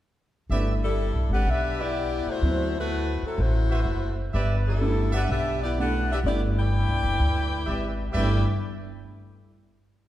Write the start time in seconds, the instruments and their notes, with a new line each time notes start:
0.50 upright bass G1, grand piano A3 B3 D4 E4, trumpet section G4 B4 D5 E5
0.84 saxophone section G3 D4 E4 A4
1.14 upright bass B1
1.29 upright bass G#1, saxophone section G4 B4 F#5
1.33 saxophone section D4
1.45 upright bass B1, saxophone section B4
1.49 saxophone section D4 G4 E5
1.79 saxophone section B3 E4 G4 D5, trumpet section G4 B4 D5 E5
2.26 saxophone section A3 E4 F#4, muted upright bass stroke
2.30 saxophone section C5
2.42 upright bass D2, grand piano F#3 B3 C4 E4
2.78 saxophone section A3 E4 F#4 B4
3.22 saxophone section F#3 C4 E4 A4, muted upright bass stroke
3.38 upright bass A1, saxophone section A3 E4 F#4 C5
3.70 trumpet section F#4 B4 C5 E5
3.85 upright bass F#1
4.33 upright bass G1, trumpet section G4 B4 D5 E5
4.67 saxophone section G3 D4 E4 A4
4.81 grand piano A3 B3 D4 E4
5.12 saxophone section D4 G4 B4 F#5, trumpet section G4 B4 D5 E5
5.29 upright bass B1, saxophone section D4 G4 B4 E5
5.63 saxophone section B3 E4 G4 D5
5.78 grand piano A3 B3 D4 E4, saxophone section D4 G4 B4 F#5
6.12 saxophone section D4 G4 B4 E5
6.24 upright bass G1, grand piano A3 B3 D4 E4, saxophone section B3 E4 G4 D5
6.58 saxophone section E4 B4 D5 G5
6.88 upright bass B1
7.04 upright bass F#1
7.20 upright bass D2
7.66 upright bass G#1, trumpet section G4 B4 D5 E5
8.12 upright bass G1, grand piano A3 B3, saxophone section E4 B4 D5 G5, trumpet section G4 B4 D5 E5
8.17 grand piano G3 D4 E4